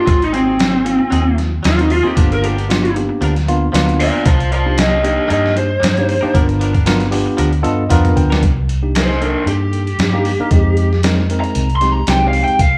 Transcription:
0.05 G#1 F#3 C4 D#4 F4 G#4, kick, closed hi-hat
0.20 D#4, muted clean electric guitar stroke, closed hi-hat
0.32 F#3 C4 D#4 G#4, closed hi-hat
0.46 A#3 C4 D#4 F#4 G#4
0.58 muted clean electric guitar stroke, snare, closed hi-hat
0.85 A#3 C4 D#4 F4, muted clean electric guitar stroke, closed hi-hat
0.99 muted clean electric guitar stroke
1.10 D#2 F#3 C4 D#4 G#4, closed hi-hat
1.26 muted clean electric guitar stroke
1.38 muted clean electric guitar stroke, snare, closed hi-hat
1.63 D#2 F#3 C4 D#4 F4 G#4, snare, closed hi-hat
1.77 A#3 C4 D#4 F#4, muted clean electric guitar stroke, closed hi-hat
1.90 F4, muted clean electric guitar stroke, open hi-hat
2.03 A#3 C4 D#4 F4 G4 G#4
2.15 G1 F3 A#3 B3 D4 F4 A#4, kick, closed hi-hat
2.30 A#4, muted clean electric guitar stroke, closed hi-hat
2.42 F3 B3 D4 G4 A#4, closed hi-hat
2.56 B3 D4 A#4, closed hi-hat
2.68 A#3 B3 D4 F4, muted clean electric guitar stroke, snare, closed hi-hat
2.85 closed hi-hat
2.95 A#3 B3 D4 G4, muted clean electric guitar stroke, closed hi-hat
3.09 muted clean electric guitar stroke
3.21 D2 F3 B3 D4 A#4, closed hi-hat
3.35 muted clean electric guitar stroke, snare, closed hi-hat
3.46 A#3 B3 D4 F4, muted clean electric guitar stroke, closed hi-hat
3.72 D2 F3 A#3 B3 D4 F4 A#4, snare, closed hi-hat
3.86 muted clean electric guitar stroke, closed hi-hat
3.99 D5 F5, muted clean electric guitar stroke, open hi-hat
4.13 B3 D4 A#4
4.25 C2 G3 D4 D#4 A#4 C5 F5, kick, closed hi-hat
4.39 muted clean electric guitar stroke, closed hi-hat
4.51 G3 D4 D#4 A#4 C5 F5, closed hi-hat
4.66 A#3 D4 D#4 G4 A#4
4.77 G4 D#5, muted clean electric guitar stroke, snare, closed hi-hat
5.03 A#3 D4 D#4 G4 D#5, muted clean electric guitar stroke, closed hi-hat
5.17 muted clean electric guitar stroke
5.28 G2 G3 D4 D#4 G4 A#4 D#5, closed hi-hat
5.43 muted clean electric guitar stroke, snare
5.55 C5, muted clean electric guitar stroke, closed hi-hat
5.80 G2 G3 D4 D#4 A#4, closed hi-hat
5.84 snare
5.95 A#3 D4 D#4 G4, muted clean electric guitar stroke, closed hi-hat
6.07 muted clean electric guitar stroke, open hi-hat
6.21 A#3 D4 D#4 G4 A#4, muted fingered electric bass stroke
6.33 G1 F3 B3 D4 F4 A#4, kick, closed hi-hat
6.48 muted clean electric guitar stroke, closed hi-hat
6.59 F3 B3 D4 A#4, closed hi-hat
6.73 B3 D4 A#4, kick, closed hi-hat
6.85 B3 D4 F4 A#4, muted clean electric guitar stroke, snare, closed hi-hat
7.00 snare, closed hi-hat
7.11 B3 D4 F4 G4, muted clean electric guitar stroke, open hi-hat
7.26 muted clean electric guitar stroke
7.37 D2 F3 B3 D4 A#4, closed hi-hat
7.53 muted clean electric guitar stroke, closed hi-hat
7.63 G2 B3 D4 F4 A4 D#5, muted clean electric guitar stroke, closed hi-hat
7.90 F2 F3 B3 D4 F4 A#4 F5, kick, closed hi-hat
8.05 muted clean electric guitar stroke, closed hi-hat, mid tom
8.16 D2 G5, muted clean electric guitar stroke, kick, closed hi-hat
8.30 B3 D4 A#4, snare
8.43 C2, kick, closed hi-hat
8.69 closed hi-hat
8.82 A#3 D4 D#4 G4
8.95 D#4 C5, snare, closed hi-hat
9.11 snare
9.21 A#3 D4 D#4 A4 A#4, closed hi-hat
9.46 G2 G4, closed hi-hat
9.73 closed hi-hat
9.87 closed hi-hat
9.99 G2, snare, closed hi-hat
10.13 A#3 D4 D#4 G4
10.25 open hi-hat
10.40 A#3 D4 D#4 A#4, muted fingered electric bass stroke
10.51 F2 G#3 C4 D#4 G4, kick, closed hi-hat
10.77 closed hi-hat
10.93 snare
11.03 G#3 C4 D#4 A#4, snare, closed hi-hat
11.18 snare
11.30 G#3 C4 D#4 A#4, closed hi-hat
11.40 A#5, closed hi-hat
11.55 C2, closed hi-hat
11.70 closed hi-hat
11.76 C6
11.81 G#3 C4 D#4 G4, snare, closed hi-hat
11.92 A#5
12.07 C2 G#3 C4 D#4 G4 G5, snare, closed hi-hat
12.28 F5
12.33 open hi-hat
12.44 G5, closed hi-hat
12.59 C2 F5, kick, closed hi-hat

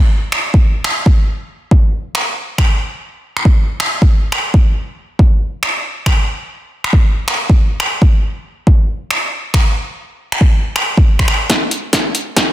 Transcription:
0.32 finger snap
0.54 kick
0.84 finger snap
1.06 kick
1.71 kick
2.15 finger snap
2.58 finger snap, kick
3.37 finger snap
3.45 kick
3.80 finger snap
4.02 kick
4.32 finger snap
4.54 kick
5.19 kick
5.63 finger snap
6.06 finger snap, kick
6.84 finger snap
6.93 kick
7.28 finger snap
7.50 kick
7.80 finger snap
8.02 kick
8.67 kick
9.11 finger snap
9.54 finger snap, kick
10.32 finger snap
10.41 kick
10.76 finger snap
10.97 kick
11.19 finger snap, kick
11.28 finger snap
11.50 kick, snare, closed hi-hat
11.71 closed hi-hat
11.93 kick, snare, closed hi-hat
12.15 closed hi-hat
12.37 kick, snare, closed hi-hat

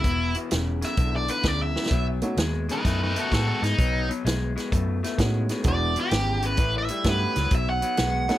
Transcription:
Already playing: E4
0.04 E1 E2 B2, kick, closed hi-hat
0.35 E2 B2, closed hi-hat
0.51 E1 E2 C#3, snare, closed hi-hat
0.81 E2 C#3 E5, snare, closed hi-hat
0.97 B1 E2 D3, kick, closed hi-hat
1.16 D5
1.28 E2 D3 B4, closed hi-hat
1.43 D2 E2 C#3 D5, kick, snare, closed hi-hat
1.62 E5
1.76 E2 C#3, snare
1.86 snare
1.91 B1 B2 F#3, kick, closed hi-hat
2.22 B2 F#3 A3 B3 C#4 D#4 F#4, closed hi-hat
2.37 D#2 B2 G#3, snare, closed hi-hat
2.69 B2 G#3 D#4, closed hi-hat
2.73 B4
2.84 F#2 B2 A3 D#4 B4, kick, snare, closed hi-hat
3.03 D#4 B4
3.15 B2 A3, closed hi-hat
3.19 F#4 A4
3.31 A2 B2 G#3 F#4 A4, kick, snare, closed hi-hat
3.47 F#4 A4
3.62 G#2 B2 G#3 D#4, snare, closed hi-hat
3.77 B1 B2 F#3, kick, closed hi-hat
4.08 B2 F#3, closed hi-hat
4.25 B1 B2 G#3, snare, closed hi-hat
4.56 B2 G#3, snare, closed hi-hat
4.72 F#2 B2 A3, kick, closed hi-hat
5.03 B2 A3, snare, closed hi-hat
5.18 A2 B2 G#3 A3 B3 C#4 D#4 F#4, kick, snare, closed hi-hat
5.49 B2 G#3, snare, closed hi-hat
5.64 E1 E2 B2 G#3 B3 D4 E4 F#4, kick, closed hi-hat
5.68 D5
5.96 E2 B2, closed hi-hat
6.00 G4
6.11 G#1 E2 C#3, snare, closed hi-hat
6.42 E2 C#3 B4, closed hi-hat
6.57 A1 A2 E3, kick, closed hi-hat
6.78 E5
6.88 A2 G3, closed hi-hat
7.04 G2 A2 F#3 A3 B3 C#4 E4 G4, kick, snare, closed hi-hat
7.09 B4
7.36 C#2 A2 F#3, snare, closed hi-hat
7.51 B1 B2 F#3, kick, closed hi-hat
7.55 E5
7.70 F#5
7.82 B2 F#3, closed hi-hat
7.97 B1 B2 G#3, snare, closed hi-hat
8.28 B2 G#3 A3 B3 C#4 D#4 F#4, snare, closed hi-hat

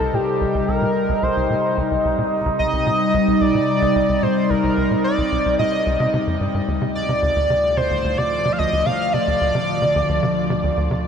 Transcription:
Already playing: C3 G3 D#4 A4
0.00 C2
0.14 A#2 G4
0.41 C2
0.55 C2
0.68 C2 A#4
0.82 A#2
1.09 C2
1.23 C2 C5
1.37 C2
1.50 A#2
1.77 C2
1.91 C2
2.05 C2
2.18 A#2
2.32 G3
2.46 C2
2.59 C2 D#5
2.73 C2
2.87 A#2
3.14 C2
3.28 C2
3.41 C2 D5
3.55 A#2
3.82 C2
3.96 C2
4.09 C2
4.23 A#2 C5
4.50 C2 A#4
4.64 C2
4.77 C2
4.91 A#2
5.04 D5
5.18 C2
5.32 C2
5.46 C2
5.59 A#2 D#5
5.86 C2
6.00 C3
6.14 C3
6.27 F2
6.41 G2
6.54 G2
6.68 D2 A2 F3
6.82 C3
6.95 D5
7.09 C3
7.23 D2
7.36 D2
7.50 C3
7.77 C3 C5
7.91 D2
8.04 D2
8.18 C3 D5
8.45 C3
8.52 F5
8.58 D2 D#5
8.73 D2
8.86 C3 F5
9.13 C3 D5
9.27 D2
9.41 D2
9.55 C3
9.82 C3
9.96 D2
10.09 D2
10.23 C3
10.50 C3
10.64 D2
10.77 D2
10.91 C3

